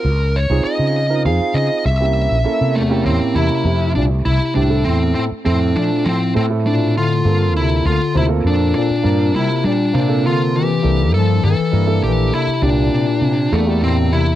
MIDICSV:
0, 0, Header, 1, 6, 480
1, 0, Start_track
1, 0, Tempo, 598205
1, 46, Time_signature, 6, 3, 24, 8
1, 11516, End_track
2, 0, Start_track
2, 0, Title_t, "Grand piano"
2, 0, Program_c, 0, 0
2, 398, Note_on_c, 0, 60, 76
2, 401, Note_on_c, 0, 63, 68
2, 403, Note_on_c, 0, 65, 65
2, 406, Note_on_c, 0, 68, 83
2, 772, Note_off_c, 0, 60, 0
2, 774, Note_off_c, 0, 63, 0
2, 775, Note_off_c, 0, 65, 0
2, 776, Note_off_c, 0, 68, 0
2, 878, Note_on_c, 0, 60, 75
2, 878, Note_on_c, 0, 63, 63
2, 883, Note_on_c, 0, 65, 63
2, 885, Note_on_c, 0, 70, 78
2, 975, Note_off_c, 0, 60, 0
2, 975, Note_off_c, 0, 63, 0
2, 978, Note_off_c, 0, 65, 0
2, 978, Note_off_c, 0, 70, 0
2, 999, Note_on_c, 0, 60, 74
2, 1004, Note_on_c, 0, 65, 73
2, 1006, Note_on_c, 0, 63, 69
2, 1011, Note_on_c, 0, 68, 90
2, 1466, Note_off_c, 0, 60, 0
2, 1469, Note_off_c, 0, 63, 0
2, 1469, Note_off_c, 0, 65, 0
2, 1472, Note_off_c, 0, 68, 0
2, 1603, Note_on_c, 0, 61, 59
2, 1604, Note_on_c, 0, 58, 62
2, 1608, Note_on_c, 0, 64, 60
2, 1609, Note_on_c, 0, 67, 68
2, 1883, Note_off_c, 0, 61, 0
2, 1884, Note_off_c, 0, 58, 0
2, 1886, Note_off_c, 0, 64, 0
2, 1886, Note_off_c, 0, 67, 0
2, 1959, Note_on_c, 0, 58, 68
2, 1962, Note_on_c, 0, 61, 67
2, 1964, Note_on_c, 0, 64, 71
2, 1969, Note_on_c, 0, 69, 83
2, 2242, Note_off_c, 0, 58, 0
2, 2243, Note_off_c, 0, 61, 0
2, 2244, Note_off_c, 0, 64, 0
2, 2247, Note_off_c, 0, 69, 0
2, 2321, Note_on_c, 0, 58, 84
2, 2326, Note_on_c, 0, 61, 79
2, 2327, Note_on_c, 0, 64, 74
2, 2332, Note_on_c, 0, 67, 86
2, 2443, Note_on_c, 0, 73, 67
2, 2670, Note_off_c, 0, 73, 0
2, 2694, Note_on_c, 0, 82, 62
2, 2916, Note_off_c, 0, 82, 0
2, 2921, Note_off_c, 0, 64, 0
2, 2925, Note_off_c, 0, 67, 0
2, 2926, Note_off_c, 0, 58, 0
2, 2927, Note_on_c, 0, 57, 60
2, 2929, Note_off_c, 0, 61, 0
2, 2932, Note_on_c, 0, 60, 58
2, 2933, Note_on_c, 0, 64, 60
2, 2937, Note_on_c, 0, 67, 66
2, 3484, Note_off_c, 0, 57, 0
2, 3487, Note_off_c, 0, 60, 0
2, 3487, Note_off_c, 0, 64, 0
2, 3489, Note_off_c, 0, 67, 0
2, 3646, Note_on_c, 0, 57, 71
2, 3649, Note_on_c, 0, 60, 66
2, 3650, Note_on_c, 0, 64, 63
2, 3657, Note_on_c, 0, 67, 80
2, 3742, Note_off_c, 0, 57, 0
2, 3743, Note_off_c, 0, 60, 0
2, 3744, Note_off_c, 0, 64, 0
2, 3747, Note_off_c, 0, 67, 0
2, 3765, Note_on_c, 0, 57, 76
2, 3765, Note_on_c, 0, 60, 70
2, 3768, Note_on_c, 0, 64, 67
2, 3772, Note_on_c, 0, 69, 85
2, 4232, Note_off_c, 0, 57, 0
2, 4232, Note_off_c, 0, 60, 0
2, 4233, Note_off_c, 0, 64, 0
2, 4235, Note_off_c, 0, 69, 0
2, 4368, Note_on_c, 0, 57, 65
2, 4370, Note_on_c, 0, 60, 55
2, 4376, Note_on_c, 0, 64, 56
2, 4377, Note_on_c, 0, 69, 70
2, 4926, Note_off_c, 0, 57, 0
2, 4926, Note_off_c, 0, 60, 0
2, 4930, Note_off_c, 0, 64, 0
2, 4930, Note_off_c, 0, 69, 0
2, 5087, Note_on_c, 0, 57, 70
2, 5089, Note_on_c, 0, 60, 64
2, 5093, Note_on_c, 0, 64, 69
2, 5098, Note_on_c, 0, 69, 78
2, 5183, Note_off_c, 0, 57, 0
2, 5184, Note_off_c, 0, 60, 0
2, 5186, Note_off_c, 0, 64, 0
2, 5188, Note_off_c, 0, 69, 0
2, 5211, Note_on_c, 0, 57, 72
2, 5214, Note_on_c, 0, 60, 68
2, 5215, Note_on_c, 0, 64, 74
2, 5220, Note_on_c, 0, 69, 84
2, 5675, Note_off_c, 0, 57, 0
2, 5677, Note_off_c, 0, 60, 0
2, 5677, Note_off_c, 0, 64, 0
2, 5679, Note_off_c, 0, 69, 0
2, 5814, Note_on_c, 0, 58, 68
2, 5816, Note_on_c, 0, 60, 60
2, 5818, Note_on_c, 0, 65, 58
2, 5826, Note_on_c, 0, 69, 70
2, 6369, Note_off_c, 0, 58, 0
2, 6370, Note_off_c, 0, 60, 0
2, 6371, Note_off_c, 0, 65, 0
2, 6375, Note_off_c, 0, 69, 0
2, 6533, Note_on_c, 0, 58, 67
2, 6535, Note_on_c, 0, 60, 66
2, 6539, Note_on_c, 0, 65, 64
2, 6539, Note_on_c, 0, 72, 75
2, 6626, Note_off_c, 0, 58, 0
2, 6627, Note_off_c, 0, 60, 0
2, 6629, Note_off_c, 0, 65, 0
2, 6629, Note_off_c, 0, 72, 0
2, 6647, Note_on_c, 0, 58, 76
2, 6649, Note_on_c, 0, 60, 72
2, 6651, Note_on_c, 0, 69, 84
2, 6652, Note_on_c, 0, 65, 69
2, 7113, Note_off_c, 0, 58, 0
2, 7114, Note_off_c, 0, 60, 0
2, 7115, Note_off_c, 0, 65, 0
2, 7115, Note_off_c, 0, 69, 0
2, 7242, Note_on_c, 0, 58, 68
2, 7247, Note_on_c, 0, 60, 58
2, 7250, Note_on_c, 0, 65, 57
2, 7253, Note_on_c, 0, 70, 71
2, 7803, Note_off_c, 0, 58, 0
2, 7805, Note_off_c, 0, 60, 0
2, 7806, Note_off_c, 0, 65, 0
2, 7808, Note_off_c, 0, 70, 0
2, 7968, Note_on_c, 0, 58, 73
2, 7969, Note_on_c, 0, 60, 63
2, 7976, Note_on_c, 0, 72, 81
2, 7977, Note_on_c, 0, 65, 68
2, 8063, Note_off_c, 0, 58, 0
2, 8064, Note_off_c, 0, 60, 0
2, 8067, Note_off_c, 0, 72, 0
2, 8068, Note_off_c, 0, 65, 0
2, 8089, Note_on_c, 0, 58, 70
2, 8090, Note_on_c, 0, 60, 65
2, 8092, Note_on_c, 0, 65, 71
2, 8095, Note_on_c, 0, 69, 85
2, 8553, Note_off_c, 0, 58, 0
2, 8554, Note_off_c, 0, 60, 0
2, 8554, Note_off_c, 0, 65, 0
2, 8556, Note_off_c, 0, 69, 0
2, 8686, Note_on_c, 0, 58, 63
2, 8692, Note_on_c, 0, 62, 58
2, 8693, Note_on_c, 0, 64, 57
2, 8693, Note_on_c, 0, 69, 70
2, 9243, Note_off_c, 0, 58, 0
2, 9246, Note_off_c, 0, 62, 0
2, 9246, Note_off_c, 0, 69, 0
2, 9247, Note_off_c, 0, 64, 0
2, 9401, Note_on_c, 0, 58, 69
2, 9403, Note_on_c, 0, 62, 65
2, 9408, Note_on_c, 0, 64, 68
2, 9409, Note_on_c, 0, 70, 72
2, 9498, Note_off_c, 0, 58, 0
2, 9499, Note_off_c, 0, 62, 0
2, 9502, Note_off_c, 0, 64, 0
2, 9503, Note_off_c, 0, 70, 0
2, 9519, Note_on_c, 0, 58, 71
2, 9521, Note_on_c, 0, 62, 67
2, 9525, Note_on_c, 0, 64, 72
2, 9527, Note_on_c, 0, 69, 90
2, 9986, Note_off_c, 0, 58, 0
2, 9987, Note_off_c, 0, 62, 0
2, 9989, Note_off_c, 0, 64, 0
2, 9990, Note_off_c, 0, 69, 0
2, 10124, Note_on_c, 0, 58, 65
2, 10125, Note_on_c, 0, 62, 63
2, 10127, Note_on_c, 0, 64, 61
2, 10129, Note_on_c, 0, 67, 77
2, 10680, Note_off_c, 0, 58, 0
2, 10680, Note_off_c, 0, 62, 0
2, 10681, Note_off_c, 0, 64, 0
2, 10682, Note_off_c, 0, 67, 0
2, 10843, Note_on_c, 0, 58, 68
2, 10843, Note_on_c, 0, 62, 68
2, 10844, Note_on_c, 0, 64, 66
2, 10853, Note_on_c, 0, 69, 84
2, 10937, Note_off_c, 0, 58, 0
2, 10937, Note_off_c, 0, 62, 0
2, 10938, Note_off_c, 0, 64, 0
2, 10942, Note_off_c, 0, 69, 0
2, 10959, Note_on_c, 0, 58, 73
2, 10962, Note_on_c, 0, 62, 69
2, 10968, Note_on_c, 0, 64, 65
2, 10969, Note_on_c, 0, 67, 83
2, 11423, Note_off_c, 0, 58, 0
2, 11425, Note_off_c, 0, 62, 0
2, 11428, Note_off_c, 0, 64, 0
2, 11428, Note_off_c, 0, 67, 0
2, 11516, End_track
3, 0, Start_track
3, 0, Title_t, "Lead electric guitar"
3, 0, Program_c, 1, 29
3, 0, Note_on_c, 1, 70, 92
3, 290, Note_on_c, 1, 73, 86
3, 305, Note_off_c, 1, 70, 0
3, 512, Note_off_c, 1, 73, 0
3, 516, Note_on_c, 1, 75, 93
3, 970, Note_off_c, 1, 75, 0
3, 1008, Note_on_c, 1, 77, 79
3, 1239, Note_on_c, 1, 75, 89
3, 1255, Note_off_c, 1, 77, 0
3, 1466, Note_off_c, 1, 75, 0
3, 1492, Note_on_c, 1, 76, 84
3, 2213, Note_on_c, 1, 57, 73
3, 2420, Note_off_c, 1, 76, 0
3, 2449, Note_off_c, 1, 57, 0
3, 2452, Note_on_c, 1, 60, 72
3, 2690, Note_on_c, 1, 64, 92
3, 2699, Note_off_c, 1, 60, 0
3, 3139, Note_off_c, 1, 64, 0
3, 3170, Note_on_c, 1, 62, 71
3, 3235, Note_off_c, 1, 62, 0
3, 3413, Note_on_c, 1, 64, 77
3, 3648, Note_off_c, 1, 64, 0
3, 3651, Note_on_c, 1, 62, 73
3, 3875, Note_off_c, 1, 62, 0
3, 3886, Note_on_c, 1, 60, 74
3, 4123, Note_off_c, 1, 60, 0
3, 4133, Note_on_c, 1, 60, 72
3, 4198, Note_off_c, 1, 60, 0
3, 4376, Note_on_c, 1, 60, 84
3, 4619, Note_on_c, 1, 62, 75
3, 4622, Note_off_c, 1, 60, 0
3, 4852, Note_on_c, 1, 60, 75
3, 4864, Note_off_c, 1, 62, 0
3, 5076, Note_off_c, 1, 60, 0
3, 5106, Note_on_c, 1, 60, 77
3, 5169, Note_off_c, 1, 60, 0
3, 5350, Note_on_c, 1, 62, 77
3, 5566, Note_off_c, 1, 62, 0
3, 5596, Note_on_c, 1, 65, 98
3, 6033, Note_off_c, 1, 65, 0
3, 6070, Note_on_c, 1, 64, 92
3, 6306, Note_off_c, 1, 64, 0
3, 6309, Note_on_c, 1, 65, 84
3, 6549, Note_off_c, 1, 65, 0
3, 6557, Note_on_c, 1, 64, 84
3, 6619, Note_off_c, 1, 64, 0
3, 6796, Note_on_c, 1, 62, 80
3, 7012, Note_off_c, 1, 62, 0
3, 7021, Note_on_c, 1, 62, 85
3, 7505, Note_off_c, 1, 62, 0
3, 7508, Note_on_c, 1, 64, 84
3, 7740, Note_off_c, 1, 64, 0
3, 7743, Note_on_c, 1, 62, 83
3, 7978, Note_off_c, 1, 62, 0
3, 7988, Note_on_c, 1, 62, 89
3, 8227, Note_off_c, 1, 62, 0
3, 8236, Note_on_c, 1, 65, 81
3, 8472, Note_off_c, 1, 65, 0
3, 8473, Note_on_c, 1, 67, 97
3, 8910, Note_off_c, 1, 67, 0
3, 8939, Note_on_c, 1, 69, 86
3, 9175, Note_off_c, 1, 69, 0
3, 9184, Note_on_c, 1, 69, 96
3, 9654, Note_off_c, 1, 69, 0
3, 9657, Note_on_c, 1, 67, 81
3, 9898, Note_on_c, 1, 64, 87
3, 9900, Note_off_c, 1, 67, 0
3, 10130, Note_off_c, 1, 64, 0
3, 10134, Note_on_c, 1, 62, 99
3, 10855, Note_on_c, 1, 57, 86
3, 10871, Note_off_c, 1, 62, 0
3, 11097, Note_off_c, 1, 57, 0
3, 11102, Note_on_c, 1, 60, 83
3, 11333, Note_on_c, 1, 64, 95
3, 11340, Note_off_c, 1, 60, 0
3, 11516, Note_off_c, 1, 64, 0
3, 11516, End_track
4, 0, Start_track
4, 0, Title_t, "Bass clarinet"
4, 0, Program_c, 2, 71
4, 2225, Note_on_c, 2, 40, 66
4, 2441, Note_off_c, 2, 40, 0
4, 2465, Note_on_c, 2, 45, 63
4, 2682, Note_off_c, 2, 45, 0
4, 2703, Note_on_c, 2, 48, 73
4, 3145, Note_off_c, 2, 48, 0
4, 3183, Note_on_c, 2, 46, 71
4, 3289, Note_off_c, 2, 46, 0
4, 3429, Note_on_c, 2, 48, 65
4, 3645, Note_off_c, 2, 48, 0
4, 3671, Note_on_c, 2, 45, 65
4, 3886, Note_off_c, 2, 45, 0
4, 3912, Note_on_c, 2, 45, 65
4, 4126, Note_off_c, 2, 45, 0
4, 4151, Note_on_c, 2, 45, 68
4, 4255, Note_off_c, 2, 45, 0
4, 4392, Note_on_c, 2, 45, 68
4, 4607, Note_off_c, 2, 45, 0
4, 4636, Note_on_c, 2, 46, 72
4, 4849, Note_off_c, 2, 46, 0
4, 4870, Note_on_c, 2, 45, 75
4, 5086, Note_off_c, 2, 45, 0
4, 5115, Note_on_c, 2, 45, 68
4, 5218, Note_off_c, 2, 45, 0
4, 5353, Note_on_c, 2, 46, 70
4, 5568, Note_off_c, 2, 46, 0
4, 5596, Note_on_c, 2, 50, 80
4, 6033, Note_off_c, 2, 50, 0
4, 6081, Note_on_c, 2, 48, 75
4, 6292, Note_off_c, 2, 48, 0
4, 6317, Note_on_c, 2, 50, 78
4, 6530, Note_off_c, 2, 50, 0
4, 6561, Note_on_c, 2, 48, 76
4, 6663, Note_off_c, 2, 48, 0
4, 6805, Note_on_c, 2, 46, 72
4, 7014, Note_off_c, 2, 46, 0
4, 7038, Note_on_c, 2, 46, 80
4, 7474, Note_off_c, 2, 46, 0
4, 7517, Note_on_c, 2, 48, 82
4, 7729, Note_off_c, 2, 48, 0
4, 7756, Note_on_c, 2, 46, 77
4, 7969, Note_off_c, 2, 46, 0
4, 7995, Note_on_c, 2, 46, 73
4, 8208, Note_off_c, 2, 46, 0
4, 8234, Note_on_c, 2, 50, 77
4, 8447, Note_off_c, 2, 50, 0
4, 8468, Note_on_c, 2, 52, 87
4, 8908, Note_off_c, 2, 52, 0
4, 8954, Note_on_c, 2, 53, 85
4, 9167, Note_off_c, 2, 53, 0
4, 9188, Note_on_c, 2, 52, 87
4, 9627, Note_off_c, 2, 52, 0
4, 9672, Note_on_c, 2, 52, 76
4, 9885, Note_off_c, 2, 52, 0
4, 9906, Note_on_c, 2, 48, 79
4, 10121, Note_off_c, 2, 48, 0
4, 10141, Note_on_c, 2, 46, 84
4, 10821, Note_off_c, 2, 46, 0
4, 10856, Note_on_c, 2, 40, 74
4, 11074, Note_off_c, 2, 40, 0
4, 11087, Note_on_c, 2, 45, 77
4, 11309, Note_off_c, 2, 45, 0
4, 11335, Note_on_c, 2, 48, 78
4, 11516, Note_off_c, 2, 48, 0
4, 11516, End_track
5, 0, Start_track
5, 0, Title_t, "Fretless electric bass"
5, 0, Program_c, 3, 35
5, 37, Note_on_c, 3, 37, 94
5, 370, Note_off_c, 3, 37, 0
5, 399, Note_on_c, 3, 36, 89
5, 512, Note_off_c, 3, 36, 0
5, 636, Note_on_c, 3, 49, 82
5, 1003, Note_on_c, 3, 41, 83
5, 1015, Note_off_c, 3, 49, 0
5, 1115, Note_off_c, 3, 41, 0
5, 1237, Note_on_c, 3, 49, 83
5, 1352, Note_off_c, 3, 49, 0
5, 1488, Note_on_c, 3, 36, 95
5, 1817, Note_off_c, 3, 36, 0
5, 1851, Note_on_c, 3, 34, 74
5, 1960, Note_off_c, 3, 34, 0
5, 2095, Note_on_c, 3, 48, 84
5, 2449, Note_on_c, 3, 40, 81
5, 2461, Note_off_c, 3, 48, 0
5, 2559, Note_off_c, 3, 40, 0
5, 2685, Note_on_c, 3, 40, 71
5, 2797, Note_off_c, 3, 40, 0
5, 2924, Note_on_c, 3, 41, 91
5, 3171, Note_on_c, 3, 36, 83
5, 3183, Note_off_c, 3, 41, 0
5, 3390, Note_off_c, 3, 36, 0
5, 3415, Note_on_c, 3, 36, 88
5, 3523, Note_off_c, 3, 36, 0
5, 3661, Note_on_c, 3, 36, 90
5, 3876, Note_off_c, 3, 36, 0
5, 3899, Note_on_c, 3, 40, 81
5, 4115, Note_off_c, 3, 40, 0
5, 4382, Note_on_c, 3, 41, 89
5, 4597, Note_off_c, 3, 41, 0
5, 4625, Note_on_c, 3, 53, 79
5, 4729, Note_off_c, 3, 53, 0
5, 4862, Note_on_c, 3, 53, 80
5, 5077, Note_off_c, 3, 53, 0
5, 5104, Note_on_c, 3, 45, 93
5, 5787, Note_off_c, 3, 45, 0
5, 5818, Note_on_c, 3, 43, 93
5, 6061, Note_off_c, 3, 43, 0
5, 6061, Note_on_c, 3, 38, 84
5, 6277, Note_off_c, 3, 38, 0
5, 6304, Note_on_c, 3, 38, 95
5, 6409, Note_off_c, 3, 38, 0
5, 6543, Note_on_c, 3, 38, 90
5, 6758, Note_off_c, 3, 38, 0
5, 6777, Note_on_c, 3, 41, 80
5, 6995, Note_off_c, 3, 41, 0
5, 7259, Note_on_c, 3, 43, 89
5, 7476, Note_off_c, 3, 43, 0
5, 7502, Note_on_c, 3, 55, 84
5, 7608, Note_off_c, 3, 55, 0
5, 7738, Note_on_c, 3, 55, 79
5, 7955, Note_off_c, 3, 55, 0
5, 7980, Note_on_c, 3, 48, 94
5, 8664, Note_off_c, 3, 48, 0
5, 8701, Note_on_c, 3, 36, 91
5, 8936, Note_off_c, 3, 36, 0
5, 8936, Note_on_c, 3, 43, 88
5, 9153, Note_off_c, 3, 43, 0
5, 9177, Note_on_c, 3, 43, 84
5, 9284, Note_off_c, 3, 43, 0
5, 9412, Note_on_c, 3, 43, 94
5, 9630, Note_off_c, 3, 43, 0
5, 9652, Note_on_c, 3, 34, 75
5, 9870, Note_off_c, 3, 34, 0
5, 10128, Note_on_c, 3, 36, 95
5, 10347, Note_off_c, 3, 36, 0
5, 10367, Note_on_c, 3, 48, 83
5, 10477, Note_off_c, 3, 48, 0
5, 10603, Note_on_c, 3, 48, 86
5, 10824, Note_off_c, 3, 48, 0
5, 10850, Note_on_c, 3, 40, 96
5, 11516, Note_off_c, 3, 40, 0
5, 11516, End_track
6, 0, Start_track
6, 0, Title_t, "Muted fretless electric bass strokes"
6, 1122, Note_on_c, 9, 29, 35
6, 1202, Note_off_c, 9, 29, 0
6, 1964, Note_on_c, 9, 29, 35
6, 2045, Note_off_c, 9, 29, 0
6, 2568, Note_on_c, 9, 29, 35
6, 2648, Note_off_c, 9, 29, 0
6, 4263, Note_on_c, 9, 29, 33
6, 4343, Note_off_c, 9, 29, 0
6, 6420, Note_on_c, 9, 29, 32
6, 6500, Note_off_c, 9, 29, 0
6, 7143, Note_on_c, 9, 29, 35
6, 7223, Note_off_c, 9, 29, 0
6, 9299, Note_on_c, 9, 29, 34
6, 9379, Note_off_c, 9, 29, 0
6, 10007, Note_on_c, 9, 29, 32
6, 10088, Note_off_c, 9, 29, 0
6, 11516, End_track
0, 0, End_of_file